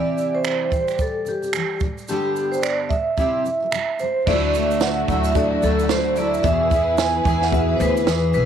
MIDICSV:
0, 0, Header, 1, 7, 480
1, 0, Start_track
1, 0, Tempo, 544465
1, 1839, Time_signature, 4, 2, 24, 8
1, 7453, End_track
2, 0, Start_track
2, 0, Title_t, "Vibraphone"
2, 0, Program_c, 0, 11
2, 0, Note_on_c, 0, 74, 91
2, 305, Note_on_c, 0, 72, 84
2, 317, Note_off_c, 0, 74, 0
2, 630, Note_off_c, 0, 72, 0
2, 641, Note_on_c, 0, 72, 71
2, 863, Note_off_c, 0, 72, 0
2, 893, Note_on_c, 0, 69, 79
2, 1133, Note_off_c, 0, 69, 0
2, 1134, Note_on_c, 0, 67, 62
2, 1574, Note_off_c, 0, 67, 0
2, 1844, Note_on_c, 0, 67, 75
2, 2218, Note_on_c, 0, 72, 76
2, 2237, Note_off_c, 0, 67, 0
2, 2315, Note_on_c, 0, 74, 88
2, 2320, Note_off_c, 0, 72, 0
2, 2549, Note_on_c, 0, 76, 80
2, 2565, Note_off_c, 0, 74, 0
2, 3480, Note_off_c, 0, 76, 0
2, 3528, Note_on_c, 0, 72, 84
2, 3764, Note_on_c, 0, 74, 97
2, 3771, Note_off_c, 0, 72, 0
2, 4208, Note_off_c, 0, 74, 0
2, 4244, Note_on_c, 0, 78, 99
2, 4632, Note_on_c, 0, 76, 88
2, 4637, Note_off_c, 0, 78, 0
2, 4727, Note_off_c, 0, 76, 0
2, 4729, Note_on_c, 0, 74, 93
2, 4968, Note_on_c, 0, 69, 85
2, 4971, Note_off_c, 0, 74, 0
2, 5207, Note_on_c, 0, 72, 93
2, 5211, Note_off_c, 0, 69, 0
2, 5426, Note_off_c, 0, 72, 0
2, 5444, Note_on_c, 0, 74, 95
2, 5671, Note_on_c, 0, 76, 98
2, 5688, Note_off_c, 0, 74, 0
2, 6156, Note_on_c, 0, 80, 103
2, 6169, Note_off_c, 0, 76, 0
2, 6546, Note_on_c, 0, 78, 90
2, 6552, Note_off_c, 0, 80, 0
2, 6633, Note_off_c, 0, 78, 0
2, 6648, Note_on_c, 0, 76, 105
2, 6820, Note_off_c, 0, 76, 0
2, 6847, Note_on_c, 0, 72, 72
2, 6886, Note_off_c, 0, 72, 0
2, 6889, Note_on_c, 0, 71, 96
2, 7343, Note_off_c, 0, 71, 0
2, 7354, Note_on_c, 0, 71, 93
2, 7453, Note_off_c, 0, 71, 0
2, 7453, End_track
3, 0, Start_track
3, 0, Title_t, "Upright piano"
3, 0, Program_c, 1, 0
3, 3754, Note_on_c, 1, 62, 64
3, 3763, Note_on_c, 1, 65, 51
3, 3770, Note_on_c, 1, 69, 59
3, 3770, Note_on_c, 1, 76, 73
3, 3816, Note_on_c, 1, 66, 62
3, 3830, Note_off_c, 1, 65, 0
3, 3947, Control_c, 1, 64, 127
3, 4474, Note_off_c, 1, 62, 0
3, 4482, Note_off_c, 1, 69, 0
3, 4482, Note_off_c, 1, 76, 0
3, 4505, Note_off_c, 1, 66, 0
3, 4707, Note_on_c, 1, 62, 71
3, 4712, Note_on_c, 1, 66, 67
3, 4720, Note_on_c, 1, 69, 68
3, 4726, Note_on_c, 1, 76, 80
3, 5430, Note_off_c, 1, 62, 0
3, 5433, Note_off_c, 1, 66, 0
3, 5436, Note_off_c, 1, 69, 0
3, 5439, Note_off_c, 1, 76, 0
3, 5672, Note_on_c, 1, 59, 68
3, 5677, Note_on_c, 1, 64, 68
3, 5678, Note_on_c, 1, 68, 63
3, 5689, Note_on_c, 1, 76, 75
3, 5691, Control_c, 1, 64, 0
3, 5855, Control_c, 1, 64, 127
3, 6392, Note_off_c, 1, 59, 0
3, 6394, Note_off_c, 1, 64, 0
3, 6395, Note_off_c, 1, 68, 0
3, 6400, Note_off_c, 1, 76, 0
3, 6623, Note_on_c, 1, 59, 70
3, 6629, Note_on_c, 1, 64, 67
3, 6632, Note_on_c, 1, 66, 51
3, 6640, Note_on_c, 1, 76, 80
3, 6692, Note_on_c, 1, 68, 68
3, 6703, Note_off_c, 1, 66, 0
3, 7346, Note_off_c, 1, 59, 0
3, 7349, Note_off_c, 1, 64, 0
3, 7355, Note_off_c, 1, 76, 0
3, 7380, Note_off_c, 1, 68, 0
3, 7453, End_track
4, 0, Start_track
4, 0, Title_t, "String section"
4, 0, Program_c, 2, 48
4, 3751, Note_on_c, 2, 62, 62
4, 3754, Note_on_c, 2, 64, 67
4, 3759, Note_on_c, 2, 50, 74
4, 3760, Note_on_c, 2, 66, 74
4, 5655, Note_off_c, 2, 62, 0
4, 5659, Note_off_c, 2, 50, 0
4, 5659, Note_off_c, 2, 66, 0
4, 5673, Note_on_c, 2, 68, 68
4, 5674, Note_on_c, 2, 71, 87
4, 5676, Note_on_c, 2, 52, 76
4, 7453, Note_off_c, 2, 52, 0
4, 7453, Note_off_c, 2, 64, 0
4, 7453, Note_off_c, 2, 68, 0
4, 7453, Note_off_c, 2, 71, 0
4, 7453, End_track
5, 0, Start_track
5, 0, Title_t, "Steel-string acoustic guitar"
5, 0, Program_c, 3, 25
5, 0, Note_on_c, 3, 48, 73
5, 0, Note_on_c, 3, 52, 62
5, 0, Note_on_c, 3, 55, 62
5, 0, Note_on_c, 3, 64, 76
5, 0, Note_on_c, 3, 67, 73
5, 608, Note_off_c, 3, 48, 0
5, 619, Note_on_c, 3, 48, 50
5, 632, Note_off_c, 3, 52, 0
5, 638, Note_off_c, 3, 64, 0
5, 646, Note_on_c, 3, 52, 57
5, 830, Note_off_c, 3, 48, 0
5, 844, Note_off_c, 3, 52, 0
5, 1100, Note_on_c, 3, 48, 45
5, 1130, Note_on_c, 3, 52, 61
5, 1241, Note_off_c, 3, 48, 0
5, 1252, Note_on_c, 3, 48, 41
5, 1268, Note_off_c, 3, 52, 0
5, 1283, Note_on_c, 3, 52, 49
5, 1337, Note_off_c, 3, 48, 0
5, 1348, Note_on_c, 3, 48, 51
5, 1365, Note_off_c, 3, 52, 0
5, 1375, Note_on_c, 3, 52, 61
5, 1555, Note_off_c, 3, 48, 0
5, 1569, Note_off_c, 3, 52, 0
5, 1595, Note_on_c, 3, 43, 53
5, 1613, Note_on_c, 3, 50, 59
5, 1623, Note_off_c, 3, 55, 0
5, 1623, Note_on_c, 3, 55, 56
5, 1799, Note_off_c, 3, 43, 0
5, 1808, Note_off_c, 3, 50, 0
5, 1813, Note_off_c, 3, 55, 0
5, 1837, Note_on_c, 3, 43, 69
5, 1842, Note_on_c, 3, 50, 65
5, 1847, Note_on_c, 3, 55, 73
5, 1851, Note_on_c, 3, 59, 78
5, 1851, Note_on_c, 3, 62, 69
5, 1855, Note_off_c, 3, 67, 0
5, 1858, Note_on_c, 3, 67, 72
5, 2540, Note_off_c, 3, 43, 0
5, 2550, Note_on_c, 3, 43, 49
5, 2554, Note_off_c, 3, 50, 0
5, 2564, Note_off_c, 3, 55, 0
5, 2565, Note_on_c, 3, 50, 57
5, 2566, Note_off_c, 3, 59, 0
5, 2566, Note_off_c, 3, 62, 0
5, 2569, Note_off_c, 3, 67, 0
5, 2579, Note_on_c, 3, 55, 57
5, 2757, Note_off_c, 3, 43, 0
5, 2764, Note_off_c, 3, 50, 0
5, 2771, Note_off_c, 3, 55, 0
5, 2792, Note_on_c, 3, 48, 56
5, 2799, Note_on_c, 3, 55, 64
5, 2802, Note_on_c, 3, 60, 67
5, 2806, Note_on_c, 3, 64, 70
5, 2812, Note_on_c, 3, 67, 62
5, 3025, Note_off_c, 3, 48, 0
5, 3035, Note_on_c, 3, 48, 48
5, 3040, Note_off_c, 3, 55, 0
5, 3041, Note_off_c, 3, 60, 0
5, 3043, Note_off_c, 3, 64, 0
5, 3046, Note_off_c, 3, 67, 0
5, 3065, Note_on_c, 3, 55, 59
5, 3166, Note_off_c, 3, 48, 0
5, 3177, Note_on_c, 3, 48, 51
5, 3196, Note_off_c, 3, 55, 0
5, 3208, Note_on_c, 3, 55, 56
5, 3261, Note_off_c, 3, 48, 0
5, 3271, Note_on_c, 3, 48, 62
5, 3292, Note_off_c, 3, 55, 0
5, 3301, Note_on_c, 3, 55, 69
5, 3477, Note_off_c, 3, 48, 0
5, 3492, Note_off_c, 3, 55, 0
5, 3517, Note_on_c, 3, 48, 50
5, 3548, Note_on_c, 3, 55, 60
5, 3720, Note_off_c, 3, 48, 0
5, 3736, Note_off_c, 3, 55, 0
5, 3766, Note_on_c, 3, 50, 76
5, 3772, Note_on_c, 3, 54, 83
5, 3776, Note_on_c, 3, 57, 76
5, 3779, Note_on_c, 3, 62, 89
5, 3787, Note_on_c, 3, 64, 86
5, 3988, Note_off_c, 3, 54, 0
5, 3999, Note_on_c, 3, 54, 65
5, 4001, Note_off_c, 3, 57, 0
5, 4003, Note_off_c, 3, 50, 0
5, 4010, Note_off_c, 3, 62, 0
5, 4011, Note_on_c, 3, 57, 70
5, 4013, Note_off_c, 3, 64, 0
5, 4019, Note_on_c, 3, 62, 68
5, 4030, Note_on_c, 3, 64, 69
5, 4468, Note_off_c, 3, 54, 0
5, 4478, Note_off_c, 3, 57, 0
5, 4478, Note_on_c, 3, 54, 61
5, 4489, Note_off_c, 3, 62, 0
5, 4489, Note_on_c, 3, 57, 63
5, 4498, Note_on_c, 3, 62, 59
5, 4505, Note_off_c, 3, 64, 0
5, 4509, Note_on_c, 3, 64, 66
5, 4943, Note_off_c, 3, 54, 0
5, 4954, Note_on_c, 3, 54, 49
5, 4955, Note_off_c, 3, 57, 0
5, 4965, Note_off_c, 3, 62, 0
5, 4965, Note_on_c, 3, 57, 62
5, 4975, Note_on_c, 3, 62, 63
5, 4979, Note_off_c, 3, 64, 0
5, 4982, Note_on_c, 3, 64, 68
5, 5173, Note_off_c, 3, 54, 0
5, 5184, Note_on_c, 3, 54, 60
5, 5185, Note_off_c, 3, 57, 0
5, 5194, Note_off_c, 3, 62, 0
5, 5196, Note_on_c, 3, 57, 59
5, 5203, Note_off_c, 3, 64, 0
5, 5205, Note_on_c, 3, 62, 61
5, 5214, Note_on_c, 3, 64, 69
5, 5420, Note_off_c, 3, 54, 0
5, 5429, Note_off_c, 3, 57, 0
5, 5430, Note_on_c, 3, 54, 57
5, 5436, Note_off_c, 3, 62, 0
5, 5439, Note_on_c, 3, 57, 58
5, 5446, Note_off_c, 3, 64, 0
5, 5447, Note_on_c, 3, 62, 63
5, 5461, Note_on_c, 3, 64, 66
5, 5667, Note_on_c, 3, 40, 78
5, 5669, Note_off_c, 3, 54, 0
5, 5669, Note_on_c, 3, 47, 79
5, 5672, Note_off_c, 3, 64, 0
5, 5673, Note_on_c, 3, 52, 84
5, 5676, Note_off_c, 3, 57, 0
5, 5679, Note_off_c, 3, 62, 0
5, 5680, Note_on_c, 3, 59, 87
5, 5682, Note_on_c, 3, 64, 77
5, 5685, Note_on_c, 3, 68, 89
5, 5896, Note_off_c, 3, 52, 0
5, 5907, Note_on_c, 3, 52, 57
5, 5909, Note_off_c, 3, 59, 0
5, 5912, Note_off_c, 3, 40, 0
5, 5913, Note_off_c, 3, 47, 0
5, 5915, Note_off_c, 3, 64, 0
5, 5919, Note_on_c, 3, 59, 70
5, 5921, Note_off_c, 3, 68, 0
5, 5926, Note_on_c, 3, 64, 61
5, 5938, Note_on_c, 3, 68, 62
5, 6380, Note_off_c, 3, 52, 0
5, 6384, Note_on_c, 3, 52, 65
5, 6387, Note_off_c, 3, 59, 0
5, 6398, Note_on_c, 3, 59, 63
5, 6402, Note_off_c, 3, 64, 0
5, 6403, Note_off_c, 3, 68, 0
5, 6406, Note_on_c, 3, 64, 73
5, 6414, Note_on_c, 3, 68, 74
5, 6851, Note_off_c, 3, 52, 0
5, 6854, Note_on_c, 3, 52, 54
5, 6857, Note_off_c, 3, 59, 0
5, 6868, Note_on_c, 3, 59, 60
5, 6875, Note_off_c, 3, 68, 0
5, 6876, Note_off_c, 3, 64, 0
5, 6879, Note_on_c, 3, 64, 68
5, 6885, Note_on_c, 3, 68, 59
5, 7091, Note_off_c, 3, 52, 0
5, 7101, Note_on_c, 3, 52, 66
5, 7105, Note_off_c, 3, 59, 0
5, 7114, Note_off_c, 3, 64, 0
5, 7115, Note_on_c, 3, 59, 65
5, 7121, Note_off_c, 3, 68, 0
5, 7124, Note_on_c, 3, 64, 66
5, 7131, Note_on_c, 3, 68, 74
5, 7332, Note_off_c, 3, 52, 0
5, 7343, Note_on_c, 3, 52, 55
5, 7345, Note_off_c, 3, 59, 0
5, 7355, Note_on_c, 3, 59, 64
5, 7356, Note_off_c, 3, 64, 0
5, 7363, Note_off_c, 3, 68, 0
5, 7367, Note_on_c, 3, 64, 63
5, 7375, Note_on_c, 3, 68, 62
5, 7453, Note_off_c, 3, 52, 0
5, 7453, Note_off_c, 3, 59, 0
5, 7453, Note_off_c, 3, 64, 0
5, 7453, Note_off_c, 3, 68, 0
5, 7453, End_track
6, 0, Start_track
6, 0, Title_t, "Upright bass"
6, 0, Program_c, 4, 32
6, 3766, Note_on_c, 4, 38, 92
6, 4447, Note_off_c, 4, 38, 0
6, 4484, Note_on_c, 4, 38, 90
6, 4926, Note_off_c, 4, 38, 0
6, 4963, Note_on_c, 4, 38, 83
6, 5645, Note_off_c, 4, 38, 0
6, 5680, Note_on_c, 4, 40, 95
6, 6363, Note_off_c, 4, 40, 0
6, 6394, Note_on_c, 4, 40, 92
6, 6840, Note_off_c, 4, 40, 0
6, 6877, Note_on_c, 4, 38, 106
6, 7113, Note_off_c, 4, 38, 0
6, 7113, Note_on_c, 4, 40, 86
6, 7335, Note_off_c, 4, 40, 0
6, 7356, Note_on_c, 4, 35, 84
6, 7453, Note_off_c, 4, 35, 0
6, 7453, End_track
7, 0, Start_track
7, 0, Title_t, "Drums"
7, 156, Note_on_c, 9, 82, 47
7, 244, Note_off_c, 9, 82, 0
7, 390, Note_on_c, 9, 82, 64
7, 393, Note_on_c, 9, 26, 98
7, 479, Note_off_c, 9, 82, 0
7, 481, Note_off_c, 9, 26, 0
7, 633, Note_on_c, 9, 36, 76
7, 638, Note_on_c, 9, 82, 49
7, 721, Note_off_c, 9, 36, 0
7, 726, Note_off_c, 9, 82, 0
7, 774, Note_on_c, 9, 82, 45
7, 778, Note_on_c, 9, 26, 28
7, 863, Note_off_c, 9, 82, 0
7, 867, Note_off_c, 9, 26, 0
7, 872, Note_on_c, 9, 36, 78
7, 873, Note_on_c, 9, 82, 67
7, 960, Note_off_c, 9, 36, 0
7, 961, Note_off_c, 9, 82, 0
7, 1111, Note_on_c, 9, 82, 45
7, 1200, Note_off_c, 9, 82, 0
7, 1260, Note_on_c, 9, 82, 46
7, 1348, Note_off_c, 9, 82, 0
7, 1349, Note_on_c, 9, 26, 97
7, 1358, Note_on_c, 9, 82, 66
7, 1437, Note_off_c, 9, 26, 0
7, 1446, Note_off_c, 9, 82, 0
7, 1588, Note_on_c, 9, 82, 43
7, 1595, Note_on_c, 9, 36, 92
7, 1676, Note_off_c, 9, 82, 0
7, 1683, Note_off_c, 9, 36, 0
7, 1744, Note_on_c, 9, 82, 44
7, 1832, Note_off_c, 9, 82, 0
7, 1835, Note_on_c, 9, 82, 65
7, 1924, Note_off_c, 9, 82, 0
7, 2081, Note_on_c, 9, 82, 50
7, 2169, Note_off_c, 9, 82, 0
7, 2233, Note_on_c, 9, 82, 47
7, 2319, Note_off_c, 9, 82, 0
7, 2319, Note_on_c, 9, 82, 65
7, 2322, Note_on_c, 9, 26, 93
7, 2407, Note_off_c, 9, 82, 0
7, 2410, Note_off_c, 9, 26, 0
7, 2561, Note_on_c, 9, 36, 83
7, 2566, Note_on_c, 9, 82, 49
7, 2649, Note_off_c, 9, 36, 0
7, 2654, Note_off_c, 9, 82, 0
7, 2800, Note_on_c, 9, 36, 72
7, 2801, Note_on_c, 9, 82, 60
7, 2888, Note_off_c, 9, 36, 0
7, 2889, Note_off_c, 9, 82, 0
7, 3046, Note_on_c, 9, 82, 42
7, 3134, Note_off_c, 9, 82, 0
7, 3282, Note_on_c, 9, 26, 93
7, 3291, Note_on_c, 9, 82, 67
7, 3371, Note_off_c, 9, 26, 0
7, 3379, Note_off_c, 9, 82, 0
7, 3519, Note_on_c, 9, 82, 45
7, 3607, Note_off_c, 9, 82, 0
7, 3765, Note_on_c, 9, 36, 125
7, 3770, Note_on_c, 9, 49, 97
7, 3853, Note_off_c, 9, 36, 0
7, 3858, Note_off_c, 9, 49, 0
7, 4006, Note_on_c, 9, 82, 57
7, 4095, Note_off_c, 9, 82, 0
7, 4151, Note_on_c, 9, 82, 53
7, 4237, Note_off_c, 9, 82, 0
7, 4237, Note_on_c, 9, 82, 79
7, 4239, Note_on_c, 9, 38, 110
7, 4325, Note_off_c, 9, 82, 0
7, 4328, Note_off_c, 9, 38, 0
7, 4482, Note_on_c, 9, 36, 86
7, 4487, Note_on_c, 9, 82, 58
7, 4570, Note_off_c, 9, 36, 0
7, 4575, Note_off_c, 9, 82, 0
7, 4620, Note_on_c, 9, 82, 58
7, 4708, Note_off_c, 9, 82, 0
7, 4719, Note_on_c, 9, 36, 95
7, 4720, Note_on_c, 9, 82, 77
7, 4807, Note_off_c, 9, 36, 0
7, 4808, Note_off_c, 9, 82, 0
7, 4959, Note_on_c, 9, 82, 52
7, 5047, Note_off_c, 9, 82, 0
7, 5107, Note_on_c, 9, 82, 51
7, 5195, Note_off_c, 9, 82, 0
7, 5196, Note_on_c, 9, 38, 103
7, 5204, Note_on_c, 9, 82, 80
7, 5284, Note_off_c, 9, 38, 0
7, 5293, Note_off_c, 9, 82, 0
7, 5431, Note_on_c, 9, 82, 53
7, 5519, Note_off_c, 9, 82, 0
7, 5589, Note_on_c, 9, 82, 51
7, 5677, Note_off_c, 9, 82, 0
7, 5678, Note_on_c, 9, 36, 118
7, 5679, Note_on_c, 9, 82, 74
7, 5766, Note_off_c, 9, 36, 0
7, 5768, Note_off_c, 9, 82, 0
7, 5918, Note_on_c, 9, 36, 83
7, 5919, Note_on_c, 9, 82, 57
7, 6006, Note_off_c, 9, 36, 0
7, 6008, Note_off_c, 9, 82, 0
7, 6154, Note_on_c, 9, 82, 75
7, 6156, Note_on_c, 9, 38, 111
7, 6242, Note_off_c, 9, 82, 0
7, 6245, Note_off_c, 9, 38, 0
7, 6395, Note_on_c, 9, 36, 96
7, 6399, Note_on_c, 9, 82, 58
7, 6483, Note_off_c, 9, 36, 0
7, 6487, Note_off_c, 9, 82, 0
7, 6539, Note_on_c, 9, 38, 32
7, 6627, Note_off_c, 9, 38, 0
7, 6633, Note_on_c, 9, 36, 91
7, 6639, Note_on_c, 9, 82, 73
7, 6722, Note_off_c, 9, 36, 0
7, 6728, Note_off_c, 9, 82, 0
7, 6879, Note_on_c, 9, 82, 53
7, 6967, Note_off_c, 9, 82, 0
7, 7025, Note_on_c, 9, 82, 53
7, 7113, Note_off_c, 9, 82, 0
7, 7114, Note_on_c, 9, 38, 109
7, 7123, Note_on_c, 9, 82, 73
7, 7202, Note_off_c, 9, 38, 0
7, 7211, Note_off_c, 9, 82, 0
7, 7347, Note_on_c, 9, 82, 50
7, 7436, Note_off_c, 9, 82, 0
7, 7453, End_track
0, 0, End_of_file